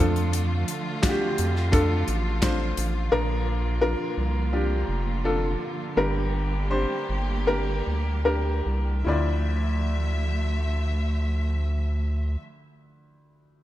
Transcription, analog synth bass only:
0.00 F2
1.39 F2
2.08 A1
2.78 A1
3.12 A#1
4.18 C2
4.88 F1
5.97 G1
7.09 G1
7.87 D2
8.66 C2
9.06 D2

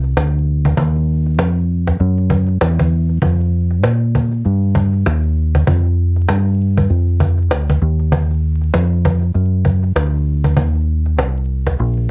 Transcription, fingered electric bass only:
Already playing: C2
0.16 D2
0.78 D#2
1.39 F2
2.00 F#2
2.61 E2
3.22 F2
3.84 A#2
4.45 G2
5.07 D#2
5.67 F2
6.29 G2
6.90 F2
7.52 D2
7.82 D#2
8.74 F2
9.35 F#2
9.96 D2
10.57 D#2
11.19 C2
11.80 A#1

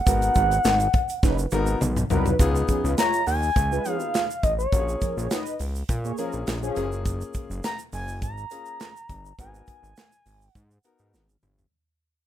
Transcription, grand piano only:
0.06 B3 D#4 F#4 A#4
1.52 B3 D#4 F#4 A#4
2.10 B3 D#4 F#4 A#4
2.40 B3 D#4 F4 G#4
3.85 B3 D#4 F4 G#4
4.72 A#3 C#4 F4 F#4
4.80 G#4
6.18 A#3 C#4 F4 G#4
6.76 A#3 C#4 F4 G#4
8.51 A#3 C#4 F4 G#4
9.39 B3 D#4 F#4 A#4
10.84 B3 D#4 F#4 A#4

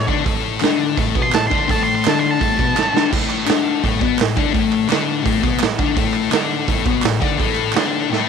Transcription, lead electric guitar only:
1.22 C6
1.34 A5
1.47 C6
1.58 C6
1.71 A5
1.83 C6
1.95 C6
2.09 A5
2.19 C6
2.31 A5

